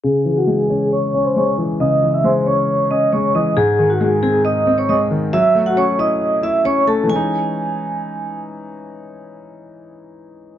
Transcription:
<<
  \new Staff \with { instrumentName = "Vibraphone" } { \time 4/4 \key cis \minor \tempo 4 = 136 <gis' gis''>8. <fis' fis''>16 <gis' gis''>8 <gis' gis''>8 <cis'' cis'''>8. <bis' bis''>16 <cis'' cis'''>8 r8 | <dis'' dis'''>8. <e'' e'''>16 <bis' bis''>8 <cis'' cis'''>4 <dis'' dis'''>8 <cis'' cis'''>8 <dis'' dis'''>8 | <gis' gis''>8. <fis' fis''>16 <gis' gis''>8 <gis' gis''>8 <dis'' dis'''>8. <cis'' cis'''>16 <dis'' dis'''>8 r8 | <e'' e'''>8. <fis' fis''>16 <cis'' cis'''>8 <dis'' dis'''>4 <e'' e'''>8 <cis'' cis'''>8 <a' a''>8 |
gis''2. r4 | r1 | }
  \new Staff \with { instrumentName = "Grand piano" } { \clef bass \time 4/4 \key cis \minor cis8 e8 gis8 cis'4 cis'8 gis8 e8 | cis8 e8 gis8 cis'4 cis'8 gis8 e8 | gis,8 dis8 gis8 bis4 bis8 gis8 dis8 | fis8 a8 cis'8 e'4 e'8 cis'8 a8 |
<e gis cis' dis'>1~ | <e gis cis' dis'>1 | }
>>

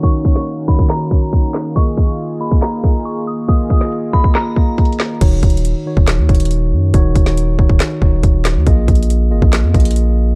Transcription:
<<
  \new Staff \with { instrumentName = "Synth bell" } { \time 4/4 \key ees \minor \tempo 4 = 139 des'''4 r8 ces'''8 bes''2 | des'''4 r8 ces'''8 bes''4 des'''8 ees'''8 | ees'''4 r8 ces'''8 bes''2 | r1 |
r1 | r1 | }
  \new Staff \with { instrumentName = "Tine electric piano" } { \time 4/4 \key ees \minor <ees ees' ges' des''>8. <ees ees' ges' des''>8. <ees ees' ges' des''>8. r16 <ees ees' ges' des''>4~ <ees ees' ges' des''>16 r16 | <bes f' aes' ees''>4~ <bes f' aes' ees''>16 r16 <bes f' aes' ees''>8. r16 <bes f' aes' ees''>4~ <bes f' aes' ees''>16 r16 | <bes f' aes' ees''>8. <bes f' aes' ees''>8. <bes f' aes' ees''>8. r16 <bes f' aes' ees''>4~ <bes f' aes' ees''>16 r16 | <ees ees' ges' des''>4~ <ees ees' ges' des''>16 r16 <ees ees' ges' des''>8. r16 <ees ees' ges' des''>4~ <ees ees' ges' des''>16 r16 |
<ees ees' ges' des''>8. <ees ees' ges' des''>8. <ees ees' ges' des''>8. r16 <ees ees' ges' des''>4~ <ees ees' ges' des''>16 r16 | <bes f' aes' ees''>4~ <bes f' aes' ees''>16 r16 <bes f' aes' ees''>8. r16 <bes f' aes' ees''>4~ <bes f' aes' ees''>16 r16 | }
  \new Staff \with { instrumentName = "Analog synth pad" } { \time 4/4 \key ees \minor << { <des' ges'>1 | <f' aes'>1~ | <f' aes'>1 | r1 |
r1 | r1 | } \\ { <ees bes>1~ | <ees bes>1~ | <ees bes>1 | r1 |
r1 | r1 | } >> }
  \new Staff \with { instrumentName = "808-style bass" } { \clef bass \time 4/4 \key ees \minor r1 | r1 | r1 | ees,,8 ees,,8. r8 ees,,8 ees,16 ees,,4 ges,8 |
ees,,8 ees,,4 ees,,8 r8 ees,,8 ees,,8. ees,16 | bes,,8 bes,,4 aes,,16 bes,,8 f,16 bes,,4. | }
  \new DrumStaff \with { instrumentName = "Drums" } \drummode { \time 4/4 <hh bd>8 <hh bd>16 sn16 hh8 bd16 bd16 <hc hh sn>8 bd8 <hh bd>8 <hc hh sn>8 | \tuplet 3/2 { <hh bd>16 r16 r16 <hh bd>16 hh16 hh16 } hh8. bd16 <hc hh sn>8 <hh bd>32 hh32 hh32 hh32 hh4 | <hh bd>8 <hh bd>16 sn16 hh8 bd16 bd16 <hc hh sn>8 bd8 \tuplet 3/2 { <hh bd>16 hh16 hh16 <hc hh sn>16 r16 r16 } | \tuplet 3/2 { <cymc hh bd>16 r16 r16 <hh bd>16 hh16 hh16 } hh8. bd16 <hc hh sn>8 <hh bd>32 hh32 hh32 hh32 hh4 |
<hh bd>8 <hh bd>16 sn16 hh8 bd16 bd16 <hc hh sn>8 bd8 <hh bd>8 <hc hh sn>8 | \tuplet 3/2 { <hh bd>16 r16 r16 <hh bd>16 hh16 hh16 } hh8. bd16 <hc hh sn>8 <hh bd>32 hh32 hh32 hh32 hh4 | }
>>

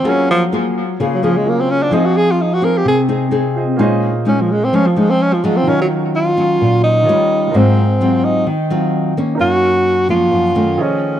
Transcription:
<<
  \new Staff \with { instrumentName = "Grand piano" } { \time 4/4 \key ees \dorian \tempo 4 = 129 <ges f' aes' bes' des''>2. <ges f' aes' bes' des''>4 | <f' aes' c'' ees''>2.~ <f' aes' c'' ees''>8 <f' aes' c'' ees''>8 | <bes f' aes' c'' des'' ees''>1 | <ees f' bes' des''>2. <ees f' g' bes' des''>4 |
<aes f' bes' c'' ees''>1 | <ees' bes' des'' f''>2. <f gis' a' cis'' ees''>4 | }
  \new Staff \with { instrumentName = "Tenor saxophone" } { \time 4/4 \key ees \dorian des'8 f8 r4 r16 ges16 f16 aes16 bes16 c'16 des'16 d'16 | ees'16 ges'16 aes'16 f'16 ees'16 ges'16 bes'16 g'16 aes'8 r4. | r4 des'16 f16 aes16 c'16 des'16 f16 aes16 c'16 des'16 f16 aes16 c'16 | des'16 ges16 r8 f'4. ees'4. |
c'4. ees'8 r2 | ges'4. f'4. cis'4 | }
  \new Staff \with { instrumentName = "Nylon-string guitar" } { \time 4/4 \key ees \dorian << { <bes f' aes'>4 <bes f' aes'>8 r8 <bes f' aes'>8 <bes f' aes'>4. | <c' ees' aes'>4 r8 <c' ees' aes'>4 <c' ees' aes'>8 <c' ees' aes'>8 r8 | <aes des' ees'>8 r8 <aes des' ees'>4 <aes des' ees'>8 <aes des' ees'>4 <ges des' f'>8~ | <ges des' f'>4. <ges des' f'>4. <g des' f'>4 |
<ges c' f'>8 r8 <ges c' f'>4 r8 <ges c' f'>4 <bes des'>8~ | <bes des'>4. <f bes des'>4 <ees a des'>4. | } \\ { ges2 des2 | f2 c2 | bes,2 f2 | ees2 bes,4 r4 |
aes,2 ees2 | ges,2 ges,4 r4 | } >> }
>>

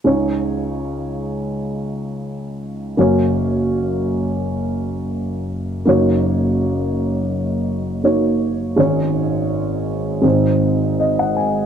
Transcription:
<<
  \new Staff \with { instrumentName = "Upright piano" } { \time 4/4 \key ees \dorian \tempo 4 = 82 << { r1 | r1 | r1 | r2. ees''16 ges''16 aes''8 | } \\ { <aes des' ees' des''>1 | <bes des' ges' des''>1 | <bes ees' ges' des''>2. <bes ees' ges' des''>4 | <aes des' ees' des''>2 <aes c' ees' c''>2 | } >> }
  \new Staff \with { instrumentName = "Upright piano" } { \clef bass \time 4/4 \key ees \dorian <des, des>1 | <ges,, ges,>1 | <ges,, ges,>1 | <aes,, aes,>2 <aes,, aes,>2 | }
>>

